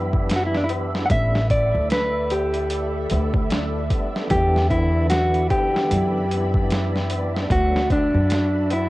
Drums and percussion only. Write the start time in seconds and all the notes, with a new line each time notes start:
0.13 kick, tabla na
0.30 snare, closed hi-hat, tabla na
0.55 snare
0.69 closed hi-hat, tabla na
0.94 snare, tabla na
1.10 kick, closed hi-hat, tabla na
1.35 snare
1.50 kick, closed hi-hat, tabla na
1.74 tabla na
1.90 snare, closed hi-hat
2.30 closed hi-hat, tabla na
2.54 closed hi-hat, tabla na
2.70 closed hi-hat, tabla na
3.10 closed hi-hat, tabla na
3.34 kick, tabla na
3.50 snare, closed hi-hat
3.90 kick, closed hi-hat, tabla na
4.15 snare, tabla na
4.30 kick, closed hi-hat, tabla na
4.56 snare
4.70 kick, closed hi-hat, tabla na
4.96 tabla na
5.10 snare, closed hi-hat
5.34 closed hi-hat
5.50 kick, closed hi-hat, tabla na
5.75 snare, tabla na
5.91 closed hi-hat, tabla na
6.31 closed hi-hat, tabla na
6.54 kick, tabla na
6.70 snare, closed hi-hat, tabla na
6.96 snare
7.10 closed hi-hat, tabla na
7.35 snare, tabla na
7.50 kick, closed hi-hat, tabla na
7.76 snare
7.90 kick, closed hi-hat, tabla na
8.15 tabla na
8.30 snare, closed hi-hat, tabla na
8.70 closed hi-hat, tabla na